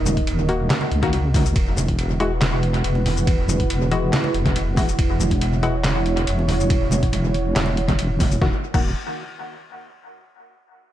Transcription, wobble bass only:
0, 0, Header, 1, 2, 480
1, 0, Start_track
1, 0, Tempo, 428571
1, 1745, Time_signature, 4, 2, 24, 8
1, 12235, End_track
2, 0, Start_track
2, 0, Title_t, "Wobble bass"
2, 0, Program_c, 0, 39
2, 0, Note_on_c, 0, 27, 101
2, 766, Note_off_c, 0, 27, 0
2, 1025, Note_on_c, 0, 37, 94
2, 1727, Note_off_c, 0, 37, 0
2, 1745, Note_on_c, 0, 28, 101
2, 3167, Note_off_c, 0, 28, 0
2, 3184, Note_on_c, 0, 28, 100
2, 4606, Note_off_c, 0, 28, 0
2, 4865, Note_on_c, 0, 28, 97
2, 5567, Note_off_c, 0, 28, 0
2, 5585, Note_on_c, 0, 28, 100
2, 7007, Note_off_c, 0, 28, 0
2, 7025, Note_on_c, 0, 28, 101
2, 8447, Note_off_c, 0, 28, 0
2, 8464, Note_on_c, 0, 28, 97
2, 9406, Note_off_c, 0, 28, 0
2, 9425, Note_on_c, 0, 27, 97
2, 9563, Note_off_c, 0, 27, 0
2, 9790, Note_on_c, 0, 27, 102
2, 10014, Note_off_c, 0, 27, 0
2, 12235, End_track
0, 0, End_of_file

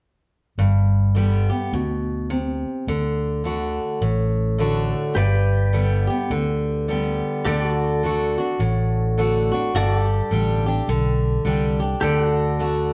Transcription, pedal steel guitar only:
0, 0, Header, 1, 2, 480
1, 0, Start_track
1, 0, Key_signature, 1, "major"
1, 0, Tempo, 571973
1, 493, Time_signature, 4, 2, 24, 8
1, 10851, End_track
2, 0, Start_track
2, 0, Title_t, "Pedal steel guitar"
2, 0, Program_c, 0, 26
2, 4322, Note_on_c, 0, 67, 62
2, 4333, Note_on_c, 0, 71, 59
2, 4344, Note_on_c, 0, 74, 57
2, 6230, Note_off_c, 0, 67, 0
2, 6236, Note_off_c, 0, 71, 0
2, 6242, Note_off_c, 0, 74, 0
2, 6255, Note_on_c, 0, 67, 66
2, 6261, Note_on_c, 0, 69, 65
2, 6272, Note_on_c, 0, 74, 64
2, 6423, Note_off_c, 0, 67, 0
2, 6423, Note_on_c, 0, 66, 66
2, 8155, Note_off_c, 0, 66, 0
2, 8158, Note_off_c, 0, 69, 0
2, 8164, Note_off_c, 0, 74, 0
2, 8189, Note_on_c, 0, 66, 61
2, 8196, Note_on_c, 0, 69, 65
2, 8205, Note_on_c, 0, 74, 57
2, 8357, Note_off_c, 0, 66, 0
2, 8357, Note_on_c, 0, 67, 61
2, 10075, Note_off_c, 0, 67, 0
2, 10078, Note_on_c, 0, 67, 57
2, 10079, Note_off_c, 0, 69, 0
2, 10088, Note_off_c, 0, 74, 0
2, 10089, Note_on_c, 0, 69, 61
2, 10105, Note_on_c, 0, 74, 66
2, 10246, Note_off_c, 0, 67, 0
2, 10246, Note_on_c, 0, 66, 57
2, 10851, Note_off_c, 0, 66, 0
2, 10851, Note_off_c, 0, 69, 0
2, 10851, Note_off_c, 0, 74, 0
2, 10851, End_track
0, 0, End_of_file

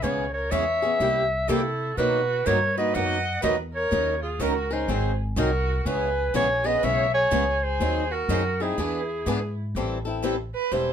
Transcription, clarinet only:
0, 0, Header, 1, 2, 480
1, 0, Start_track
1, 0, Tempo, 485830
1, 27, Time_signature, 4, 2, 24, 8
1, 10798, End_track
2, 0, Start_track
2, 0, Title_t, "Clarinet"
2, 0, Program_c, 0, 71
2, 33, Note_on_c, 0, 73, 85
2, 332, Note_off_c, 0, 73, 0
2, 338, Note_on_c, 0, 73, 84
2, 510, Note_on_c, 0, 76, 102
2, 524, Note_off_c, 0, 73, 0
2, 1471, Note_on_c, 0, 69, 82
2, 1486, Note_off_c, 0, 76, 0
2, 1950, Note_off_c, 0, 69, 0
2, 1956, Note_on_c, 0, 71, 92
2, 2440, Note_on_c, 0, 73, 101
2, 2455, Note_off_c, 0, 71, 0
2, 2739, Note_off_c, 0, 73, 0
2, 2749, Note_on_c, 0, 75, 86
2, 2918, Note_on_c, 0, 78, 97
2, 2933, Note_off_c, 0, 75, 0
2, 3390, Note_off_c, 0, 78, 0
2, 3396, Note_on_c, 0, 75, 90
2, 3532, Note_off_c, 0, 75, 0
2, 3707, Note_on_c, 0, 73, 85
2, 4149, Note_off_c, 0, 73, 0
2, 4176, Note_on_c, 0, 68, 79
2, 4365, Note_on_c, 0, 70, 95
2, 4380, Note_off_c, 0, 68, 0
2, 4671, Note_on_c, 0, 72, 82
2, 4686, Note_off_c, 0, 70, 0
2, 5109, Note_off_c, 0, 72, 0
2, 5328, Note_on_c, 0, 70, 84
2, 5757, Note_off_c, 0, 70, 0
2, 5757, Note_on_c, 0, 70, 70
2, 5798, Note_on_c, 0, 71, 97
2, 5813, Note_off_c, 0, 70, 0
2, 6277, Note_off_c, 0, 71, 0
2, 6284, Note_on_c, 0, 73, 107
2, 6583, Note_on_c, 0, 75, 98
2, 6597, Note_off_c, 0, 73, 0
2, 6760, Note_on_c, 0, 76, 110
2, 6775, Note_off_c, 0, 75, 0
2, 7052, Note_off_c, 0, 76, 0
2, 7058, Note_on_c, 0, 73, 101
2, 7541, Note_on_c, 0, 72, 89
2, 7556, Note_off_c, 0, 73, 0
2, 8031, Note_on_c, 0, 70, 87
2, 8046, Note_off_c, 0, 72, 0
2, 8520, Note_on_c, 0, 68, 75
2, 8534, Note_off_c, 0, 70, 0
2, 9467, Note_off_c, 0, 68, 0
2, 10798, End_track
0, 0, End_of_file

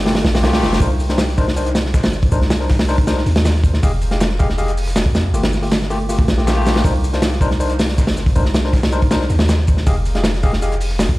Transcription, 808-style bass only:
0, 0, Header, 1, 2, 480
1, 0, Start_track
1, 0, Key_signature, -3, "minor"
1, 0, Tempo, 377358
1, 1030, Time_signature, 4, 2, 24, 8
1, 14231, End_track
2, 0, Start_track
2, 0, Title_t, "808-style bass"
2, 0, Program_c, 0, 38
2, 0, Note_on_c, 0, 31, 102
2, 290, Note_off_c, 0, 31, 0
2, 309, Note_on_c, 0, 34, 93
2, 550, Note_on_c, 0, 36, 107
2, 569, Note_off_c, 0, 34, 0
2, 790, Note_on_c, 0, 29, 101
2, 809, Note_off_c, 0, 36, 0
2, 1007, Note_off_c, 0, 29, 0
2, 1022, Note_on_c, 0, 36, 101
2, 2594, Note_on_c, 0, 31, 103
2, 2613, Note_off_c, 0, 36, 0
2, 2931, Note_off_c, 0, 31, 0
2, 2951, Note_on_c, 0, 36, 101
2, 4132, Note_off_c, 0, 36, 0
2, 4151, Note_on_c, 0, 39, 94
2, 4852, Note_off_c, 0, 39, 0
2, 4876, Note_on_c, 0, 29, 99
2, 6434, Note_on_c, 0, 41, 104
2, 6453, Note_off_c, 0, 29, 0
2, 6771, Note_off_c, 0, 41, 0
2, 6788, Note_on_c, 0, 31, 100
2, 7970, Note_off_c, 0, 31, 0
2, 7989, Note_on_c, 0, 34, 94
2, 8691, Note_off_c, 0, 34, 0
2, 8708, Note_on_c, 0, 36, 102
2, 10275, Note_on_c, 0, 31, 106
2, 10294, Note_off_c, 0, 36, 0
2, 10611, Note_off_c, 0, 31, 0
2, 10636, Note_on_c, 0, 36, 102
2, 11814, Note_off_c, 0, 36, 0
2, 11830, Note_on_c, 0, 39, 93
2, 12532, Note_off_c, 0, 39, 0
2, 12552, Note_on_c, 0, 29, 101
2, 14106, Note_on_c, 0, 41, 106
2, 14125, Note_off_c, 0, 29, 0
2, 14231, Note_off_c, 0, 41, 0
2, 14231, End_track
0, 0, End_of_file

